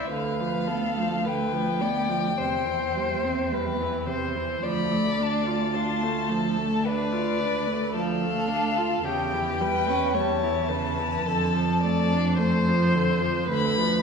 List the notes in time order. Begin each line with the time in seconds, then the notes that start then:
Already playing: E4
0.05 E5
0.10 D2 D3 B4 F5
0.40 F3
0.67 B3 A4
0.98 F3
1.25 D3 B4 G5
1.53 F3
1.81 B3 D5
2.09 F3
2.38 E2 C3 C5
2.66 E3
2.96 G3
3.25 C4
3.52 G3 B4
3.80 E3
4.07 C3 C5
4.36 E3
4.63 D2 F3 D5 B5
4.92 A3
5.20 D4 A5
5.48 F4
5.74 D4 F4
6.03 A3
6.30 F3 A4
6.58 A3
6.84 D4 B4
6.89 D5
7.13 F4
7.40 D4
7.67 A3
7.94 F3 A4
7.99 F5
8.22 A3
8.48 D4
8.78 F4
9.05 E2 C#3 G4 G5
9.34 E3
9.61 G3 B4
9.89 C#4
10.14 G3 C#5
10.19 A5
10.43 E3
10.69 C#3 B4
11.00 E3
11.26 F2 D3 A4
11.54 F3
11.80 A3 D5
12.13 D4
12.37 A3 C5
12.68 F3
12.95 D3
13.22 F3
13.49 D2 D3 B4
13.54 B5
13.77 F3